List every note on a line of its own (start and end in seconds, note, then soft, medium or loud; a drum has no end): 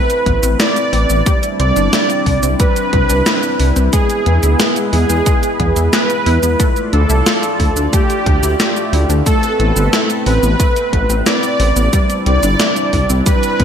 0.00 1.24 A3 medium
0.00 1.24 C4 medium
0.00 11.89 E4 medium
0.00 0.46 B4 loud
0.00 1.24 B4 medium
0.10 closed hi-hat soft
0.10 cabasa soft
0.26 0.39 A1 medium
0.26 0.41 B3 medium
0.26 kick medium
0.26 closed hi-hat medium
0.43 0.55 A1 medium
0.43 0.59 C4 medium
0.43 closed hi-hat soft
0.43 cabasa medium
0.59 0.74 E4 medium
0.59 1.46 D5 loud
0.59 snare loud
0.59 closed hi-hat loud
0.59 cabasa soft
0.76 closed hi-hat soft
0.76 cabasa soft
0.93 1.05 A1 loud
0.93 1.08 C4 medium
0.93 open hi-hat medium
1.09 1.22 A1 medium
1.09 1.24 B3 medium
1.09 closed hi-hat soft
1.09 cabasa medium
1.26 1.35 G3 loud
1.26 3.90 G3 medium
1.26 3.90 C4 medium
1.26 3.90 D4 medium
1.26 kick loud
1.26 closed hi-hat loud
1.26 cabasa soft
1.43 closed hi-hat soft
1.43 cabasa soft
1.60 1.72 C2 loud
1.60 1.75 C4 medium
1.60 2.46 D5 loud
1.60 closed hi-hat medium
1.76 1.89 G1 medium
1.76 1.92 D4 medium
1.76 closed hi-hat soft
1.76 cabasa medium
1.93 2.08 E4 medium
1.93 snare loud
1.93 closed hi-hat loud
1.93 cabasa soft
2.10 closed hi-hat soft
2.10 cabasa soft
2.26 2.39 C2 medium
2.26 2.41 D4 medium
2.26 kick medium
2.26 open hi-hat medium
2.43 2.55 C2 medium
2.43 2.58 C4 medium
2.43 closed hi-hat soft
2.43 cabasa medium
2.60 2.69 G3 loud
2.60 3.80 B4 loud
2.60 kick loud
2.60 closed hi-hat loud
2.60 cabasa soft
2.76 closed hi-hat soft
2.76 cabasa soft
2.93 3.05 C2 medium
2.93 3.08 C4 medium
2.93 kick loud
2.93 closed hi-hat medium
3.10 3.22 C2 medium
3.10 3.25 D4 medium
3.10 closed hi-hat soft
3.10 cabasa medium
3.26 3.41 E4 medium
3.26 snare loud
3.26 closed hi-hat medium
3.26 cabasa soft
3.43 closed hi-hat soft
3.43 cabasa soft
3.60 3.72 C2 medium
3.60 3.75 D4 medium
3.60 open hi-hat medium
3.76 3.89 C2 medium
3.76 3.91 C4 medium
3.76 closed hi-hat soft
3.76 cabasa medium
3.93 6.57 G#3 medium
3.93 4.02 G#3 loud
3.93 6.57 B3 medium
3.93 4.80 G#4 loud
3.93 6.57 B4 medium
3.93 kick loud
3.93 closed hi-hat medium
3.93 cabasa medium
4.10 closed hi-hat soft
4.10 cabasa soft
4.26 4.39 E2 loud
4.26 4.41 B3 medium
4.26 closed hi-hat medium
4.43 4.55 D2 medium
4.43 4.59 E4 medium
4.43 closed hi-hat soft
4.43 cabasa medium
4.60 4.75 G#4 medium
4.60 snare loud
4.60 closed hi-hat loud
4.60 cabasa soft
4.76 closed hi-hat soft
4.76 cabasa soft
4.93 5.05 E2 medium
4.93 5.08 E4 medium
4.93 5.80 G#4 loud
4.93 open hi-hat medium
5.10 5.22 E2 medium
5.10 5.25 B3 medium
5.10 closed hi-hat soft
5.10 cabasa medium
5.26 5.35 G#3 loud
5.26 kick loud
5.26 closed hi-hat loud
5.26 cabasa soft
5.43 closed hi-hat soft
5.43 cabasa soft
5.60 5.72 E2 loud
5.60 5.75 B3 medium
5.60 kick medium
5.60 closed hi-hat medium
5.76 5.89 E2 medium
5.76 5.92 E4 medium
5.76 closed hi-hat soft
5.76 cabasa medium
5.93 6.08 G#4 medium
5.93 6.80 B4 loud
5.93 snare loud
5.93 closed hi-hat loud
5.93 cabasa soft
6.10 closed hi-hat soft
6.10 cabasa soft
6.26 6.39 E2 loud
6.26 6.41 E4 medium
6.26 open hi-hat medium
6.43 6.55 E2 medium
6.43 6.58 B3 medium
6.43 closed hi-hat soft
6.43 cabasa medium
6.59 11.89 A3 medium
6.59 6.69 A3 loud
6.59 9.24 F4 medium
6.59 9.24 D5 medium
6.59 kick loud
6.59 closed hi-hat medium
6.59 cabasa soft
6.76 closed hi-hat soft
6.76 cabasa soft
6.93 7.05 D2 medium
6.93 7.08 D4 medium
6.93 7.80 A4 loud
6.93 closed hi-hat medium
7.10 7.22 C2 medium
7.10 7.26 E4 medium
7.10 closed hi-hat soft
7.10 cabasa medium
7.26 7.41 F4 medium
7.26 snare loud
7.26 closed hi-hat loud
7.26 cabasa soft
7.43 closed hi-hat soft
7.43 cabasa soft
7.60 7.72 D2 medium
7.60 7.75 E4 medium
7.60 kick medium
7.60 open hi-hat medium
7.76 7.89 D2 medium
7.76 7.91 D4 medium
7.76 closed hi-hat soft
7.76 cabasa medium
7.93 8.02 A3 loud
7.93 9.13 G4 loud
7.93 kick loud
7.93 closed hi-hat loud
7.93 cabasa soft
8.10 closed hi-hat soft
8.10 cabasa soft
8.26 8.39 D2 loud
8.26 8.41 D4 medium
8.26 kick loud
8.26 closed hi-hat medium
8.43 8.55 D2 medium
8.43 8.59 E4 medium
8.43 closed hi-hat soft
8.43 cabasa medium
8.60 8.75 F4 medium
8.60 snare loud
8.60 closed hi-hat medium
8.60 cabasa medium
8.76 closed hi-hat soft
8.76 cabasa soft
8.93 9.05 D2 loud
8.93 9.08 E4 medium
8.93 open hi-hat medium
9.10 9.22 D2 medium
9.10 9.25 D4 medium
9.10 closed hi-hat soft
9.10 cabasa medium
9.26 9.35 A3 loud
9.26 11.90 C4 medium
9.26 10.13 A4 loud
9.26 11.90 B4 medium
9.26 kick loud
9.26 closed hi-hat medium
9.26 cabasa medium
9.43 closed hi-hat soft
9.43 cabasa soft
9.60 9.72 A1 medium
9.60 9.75 B3 medium
9.60 closed hi-hat medium
9.76 9.89 G1 medium
9.76 9.92 C4 medium
9.76 closed hi-hat soft
9.76 cabasa medium
9.93 10.08 E4 medium
9.93 snare loud
9.93 closed hi-hat medium
9.93 cabasa medium
10.10 closed hi-hat soft
10.10 cabasa soft
10.26 10.39 A1 medium
10.26 10.41 C4 medium
10.26 11.13 B4 loud
10.26 open hi-hat medium
10.43 10.55 A1 medium
10.43 10.58 B3 medium
10.43 closed hi-hat soft
10.43 cabasa medium
10.60 10.69 A3 loud
10.60 kick loud
10.60 closed hi-hat medium
10.60 cabasa medium
10.76 closed hi-hat soft
10.76 cabasa soft
10.93 11.05 A1 medium
10.93 11.08 B3 medium
10.93 kick medium
10.93 closed hi-hat medium
11.10 11.22 A1 medium
11.10 11.26 C4 medium
11.10 closed hi-hat soft
11.10 cabasa medium
11.26 11.41 E4 medium
11.26 12.13 D5 loud
11.26 snare loud
11.26 closed hi-hat medium
11.26 cabasa medium
11.43 closed hi-hat soft
11.43 cabasa soft
11.60 11.72 A1 loud
11.60 11.75 C4 medium
11.60 open hi-hat medium
11.76 11.89 A1 medium
11.76 11.91 B3 medium
11.76 closed hi-hat soft
11.76 cabasa medium
11.93 12.02 G3 loud
11.93 13.64 G3 medium
11.93 13.64 C4 medium
11.93 13.64 D4 medium
11.93 13.64 E4 medium
11.93 kick loud
11.93 closed hi-hat medium
11.93 cabasa medium
12.10 closed hi-hat soft
12.10 cabasa soft
12.26 12.39 C2 medium
12.26 12.41 C4 medium
12.26 13.13 D5 loud
12.26 closed hi-hat medium
12.43 12.55 G1 medium
12.43 12.59 D4 medium
12.43 closed hi-hat soft
12.43 cabasa medium
12.60 12.75 E4 medium
12.60 snare loud
12.60 closed hi-hat medium
12.60 cabasa medium
12.76 closed hi-hat soft
12.76 cabasa soft
12.93 13.05 C2 medium
12.93 13.08 D4 medium
12.93 kick medium
12.93 open hi-hat medium
13.10 13.22 C2 medium
13.10 13.25 C4 medium
13.10 closed hi-hat soft
13.10 cabasa medium
13.26 13.35 G3 loud
13.26 13.64 B4 loud
13.26 kick loud
13.26 closed hi-hat medium
13.26 cabasa medium
13.43 closed hi-hat soft
13.43 cabasa soft
13.60 13.64 C2 medium
13.60 13.64 C4 medium
13.60 kick loud
13.60 closed hi-hat medium